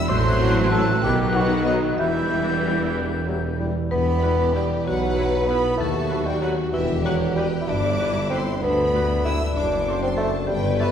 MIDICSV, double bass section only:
0, 0, Header, 1, 2, 480
1, 0, Start_track
1, 0, Key_signature, 1, "minor"
1, 0, Tempo, 637620
1, 70, Time_signature, 6, 3, 24, 8
1, 2952, Tempo, 625000
1, 8324, End_track
2, 0, Start_track
2, 0, Title_t, "Double bass section"
2, 0, Program_c, 0, 48
2, 66, Note_on_c, 0, 33, 92
2, 746, Note_off_c, 0, 33, 0
2, 772, Note_on_c, 0, 35, 80
2, 1493, Note_on_c, 0, 28, 81
2, 1494, Note_off_c, 0, 35, 0
2, 2770, Note_off_c, 0, 28, 0
2, 2952, Note_on_c, 0, 28, 76
2, 3555, Note_off_c, 0, 28, 0
2, 3682, Note_on_c, 0, 35, 67
2, 4276, Note_off_c, 0, 35, 0
2, 4400, Note_on_c, 0, 39, 76
2, 4995, Note_off_c, 0, 39, 0
2, 5119, Note_on_c, 0, 28, 76
2, 5727, Note_off_c, 0, 28, 0
2, 5842, Note_on_c, 0, 31, 91
2, 6443, Note_off_c, 0, 31, 0
2, 6560, Note_on_c, 0, 38, 81
2, 7159, Note_off_c, 0, 38, 0
2, 7277, Note_on_c, 0, 30, 93
2, 7874, Note_off_c, 0, 30, 0
2, 7994, Note_on_c, 0, 31, 75
2, 8324, Note_off_c, 0, 31, 0
2, 8324, End_track
0, 0, End_of_file